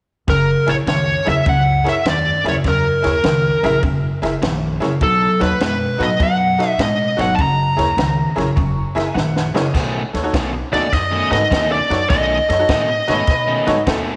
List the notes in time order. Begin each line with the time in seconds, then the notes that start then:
0.28 F#1 F#2 C#3 A#4, kick, snare, ride
0.67 A#1 E4 G#4 A#4 C#5, snare, ride
0.87 C#2 F#2 D#3 C#5, snare, ride
1.25 E2 F#2 C#3 E4 G#4 A#4 E5, snare, ride
1.29 E5
1.46 C#2 F#2 C#3 F#5, kick, ride
1.84 E4 G#4 A#4 C#5, snare, ride
1.89 E5
2.05 E2 F#2 D#3 D5, snare, ride
2.44 D#2 F#2 C#3 E4 G#4 A#4 E5, snare, ride
2.48 C#5
2.64 E2 F#2 C#3 A#4, kick, snare, ride
3.02 D#2 E4 G#4 A#4 C#5, snare, ride
3.24 C#2 F#2 D#3, snare, ride
3.63 A#1 F#2 C#3 E4 G#4 A#4 E5, snare, ride
3.83 E1 F#2 C#3, kick, ride
4.22 F#1 E4 G#4 A#4 E5, snare, ride
4.42 A#1 F#2 D#3, snare, ride
4.80 F#2 C#3 E4 G#4 A#4 C#5, snare, ride
5.01 B1 B2 F#3 A4, kick, ride
5.39 D#2 D#4 F#4 A4 B4 C#5, snare, ride
5.60 F#2 B2 G#3 B4, snare, ride
5.98 A2 B2 F#3 D#4 F#4 A4 B4, snare, ride
6.03 D#5
6.20 F#2 B2 F#3 F#5, kick, ride
6.58 D#4 F#4 A4 D#5, snare, ride
6.69 E5
6.78 A2 B2 G#3 D#5, snare, ride
7.17 G#1 B2 F#3 D#4 F#4 A4 C#5 F#5, snare, ride
7.35 F#1 F#2 A5, kick, ride
7.39 C#3 A#5
7.77 D#2 E4 G#4 A#4 C#5, snare, ride
7.97 C#2 F#2 D#3, snare, ride
8.36 A#1 F#2 C#3 E4 G#4 A#4 C#5 A#5, snare, ride
8.56 E1 F#2 C#3 C#6, kick, ride
8.95 F#1 E4 G#4 A#4 E5 A#5, snare, ride
9.06 G#5
9.14 A#1 F#2 D#3 F#5, snare
9.36 snare
9.54 F#2 C#3 E4 G#4 A#4 C#5 D#5, snare
9.74 B1 B2 D#3 A3 C#4, kick, snare, crash
10.13 D#2 A4 C#5, snare, ride
10.23 D#4 F#4 A4 C#5
10.33 B1 B2 D#3 A3 C#4, kick, snare, ride
10.53 muted overdriven electric guitar stroke
10.72 D#2 B2 D#3 A3 C#4 D#4 F#4 A4 D5 D#5, snare, ride
10.92 F#2 D#5, kick, snare, ride
11.11 B2 D#3 A3 C#4
11.30 G#2 D#4 F#4 A4 B4 D#5, snare, ride
11.41 muted overdriven electric guitar stroke
11.51 D#2 B2 D#3 A3 C#4, kick, snare, ride
11.72 D5
11.89 F#2 D#4 F#4 A4 C#5, snare, ride
12.10 B1 B2 D#3 A3 C#4 D#5, kick, snare, ride
12.49 F#2 A4 C#5, snare, ride
12.58 D#4 F#4 A4 C#5
12.69 A2 B2 D#3 A3 C#4, kick, snare, ride
12.89 muted overdriven electric guitar stroke
13.07 G#2 B2 D#3 A3 C#4 D#4 F#4 A4 B4 C#5, snare, ride
13.27 B2 B4, kick, snare, ride
13.47 B2 D#3 A3 C#4
13.66 G#2 D#4 F#4 A4 C#5, snare, ride
13.77 muted overdriven electric guitar stroke
13.87 D#2 B2 D#3 A3 C#4 A4, kick, snare, ride